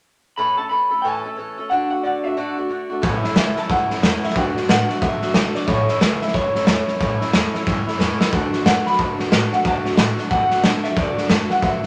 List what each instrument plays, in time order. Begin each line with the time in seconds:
0.37 steel-string acoustic guitar A2 E3 A3 C#4 A4, clean electric guitar B5
0.57 steel-string acoustic guitar A3 C#4 A4, clean electric guitar A5
0.69 steel-string acoustic guitar E3 A3 C#4 A4, clean electric guitar B5
0.91 steel-string acoustic guitar A3 C#4 A4
1.02 steel-string acoustic guitar A2 E3 A3 C#4 A4, clean electric guitar A5
1.24 steel-string acoustic guitar A3 C#4 A4
1.36 steel-string acoustic guitar E3 A3 C#4 A4
1.58 steel-string acoustic guitar A3 C#4 A4
1.70 steel-string acoustic guitar D3 A3 D4 F#4, clean electric guitar F#5
1.91 steel-string acoustic guitar A3 D4 F#4, clean electric guitar F#5
2.03 steel-string acoustic guitar D3 A3 D4 F#4, clean electric guitar D5
2.24 steel-string acoustic guitar A3 D4 F#4, clean electric guitar E5
2.37 steel-string acoustic guitar D3 A3 D4 F#4, clean electric guitar D5
2.57 steel-string acoustic guitar A3 D4 F#4
2.69 steel-string acoustic guitar D3 A3 D4 F#4
2.90 steel-string acoustic guitar A3 D4 F#4
3.02 upright bass A1, steel-string acoustic guitar A2 E3 A3 C#4 E4, kick, snare
3.22 steel-string acoustic guitar A3 C#4 E4, muted upright bass stroke, snare
3.35 upright bass C#2, steel-string acoustic guitar A2 E3 A3 C#4 E4, clean electric guitar E5, snare, hi-hat pedal
3.54 steel-string acoustic guitar A3 C#4 E4, snare
3.59 clean electric guitar A5
3.68 steel-string acoustic guitar E3 A3 C#4 E4, clean electric guitar F#5, kick, snare
3.89 upright bass G2, steel-string acoustic guitar A3 C#4 E4, snare
4.02 upright bass E2, steel-string acoustic guitar A2 E3 A3 C#4 E4, snare, hi-hat pedal
4.22 steel-string acoustic guitar A3 C#4 E4, clean electric guitar E5, muted upright bass stroke, snare
4.30 snare
4.34 upright bass D2, steel-string acoustic guitar D3 A3 D4 F#4, clean electric guitar F#5, kick, snare
4.55 steel-string acoustic guitar A3 D4 F#4, snare
4.68 upright bass A2, steel-string acoustic guitar D3 A3 D4 F#4, clean electric guitar F#5, snare, hi-hat pedal
4.89 steel-string acoustic guitar A3 D4 F#4, snare
5.02 upright bass B2, steel-string acoustic guitar D3 A3 D4 F#4, clean electric guitar E5, kick, snare
5.22 steel-string acoustic guitar A3 D4 F#4, muted upright bass stroke, snare
5.34 upright bass B1, steel-string acoustic guitar D3 A3 D4 F#4, snare, hi-hat pedal
5.54 steel-string acoustic guitar A3 D4 F#4, clean electric guitar D5, muted upright bass stroke, snare
5.67 upright bass A1, steel-string acoustic guitar A2 E3 A3 C#4 E4, clean electric guitar C#5, kick, snare
5.88 steel-string acoustic guitar A3 C#4 E4, snare
6.00 upright bass C#2, steel-string acoustic guitar A2 E3 A3 C#4 E4, snare, hi-hat pedal
6.21 steel-string acoustic guitar A3 C#4 E4, clean electric guitar E5, muted upright bass stroke, snare
6.28 snare
6.33 steel-string acoustic guitar E3 A3 C#4 E4, clean electric guitar C#5, kick, snare
6.53 upright bass G2, steel-string acoustic guitar A3 C#4 E4, snare
6.67 upright bass E2, steel-string acoustic guitar A2 E3 A3 C#4 E4, clean electric guitar C#5, snare, hi-hat pedal
6.88 steel-string acoustic guitar A3 C#4 E4, muted upright bass stroke, snare
7.00 upright bass A1, steel-string acoustic guitar A2 E3 A3 C#4 E4, kick, snare
7.20 steel-string acoustic guitar A3 C#4 E4, snare
7.33 upright bass E2, steel-string acoustic guitar A2 E3 A3 C#4 E4, snare, hi-hat pedal
7.53 steel-string acoustic guitar A3 C#4 E4, muted upright bass stroke, snare
7.66 upright bass G2, steel-string acoustic guitar E3 A3 C#4 E4, kick, snare
7.86 steel-string acoustic guitar A3 C#4 E4, snare
7.98 upright bass E2, steel-string acoustic guitar A2 E3 A3 C#4 E4, snare, hi-hat pedal
8.18 steel-string acoustic guitar A3 C#4 E4, muted upright bass stroke, snare
8.31 upright bass D2, steel-string acoustic guitar D3 A3 D4 F#4, kick, snare
8.52 steel-string acoustic guitar A3 D4 F#4, muted upright bass stroke, snare
8.65 upright bass F#2, steel-string acoustic guitar D3 A3 D4 F#4, clean electric guitar F#5, snare, hi-hat pedal
8.85 steel-string acoustic guitar A3 D4 F#4, clean electric guitar B5, muted upright bass stroke, snare
8.93 snare
8.97 upright bass A2, steel-string acoustic guitar D3 A3 D4 F#4, clean electric guitar A5, kick, snare
9.17 upright bass B2, steel-string acoustic guitar A3 D4 F#4, snare
9.31 upright bass A2, steel-string acoustic guitar D3 A3 D4 F#4, snare, hi-hat pedal
9.51 steel-string acoustic guitar A3 D4 F#4, clean electric guitar F#5, muted upright bass stroke, snare
9.64 upright bass D2, steel-string acoustic guitar D3 A3 D4 F#4, clean electric guitar A5, kick, snare
9.85 steel-string acoustic guitar A3 D4 F#4, muted upright bass stroke, snare
9.97 upright bass A2, steel-string acoustic guitar D3 A3 D4 F#4, clean electric guitar A5, snare, hi-hat pedal
10.17 steel-string acoustic guitar A3 D4 F#4, snare
10.29 upright bass B2, steel-string acoustic guitar D3 A3 D4 F#4, clean electric guitar F#5, kick, snare
10.50 steel-string acoustic guitar A3 D4 F#4, muted upright bass stroke, snare
10.63 upright bass B2, steel-string acoustic guitar D3 A3 D4 F#4, snare, hi-hat pedal
10.83 steel-string acoustic guitar A3 D4 F#4, clean electric guitar E5, muted upright bass stroke, snare
10.96 upright bass D2, steel-string acoustic guitar D3 A3 D4 F#4, clean electric guitar D5, kick, snare
11.17 steel-string acoustic guitar A3 D4 F#4, muted upright bass stroke, snare
11.28 upright bass F#2, steel-string acoustic guitar D3 A3 D4 F#4, snare, hi-hat pedal
11.48 steel-string acoustic guitar A3 D4 F#4, clean electric guitar F#5, muted upright bass stroke, snare
11.61 steel-string acoustic guitar D3 A3 D4 F#4, clean electric guitar E5, kick, snare
11.83 upright bass B2, steel-string acoustic guitar F#4, snare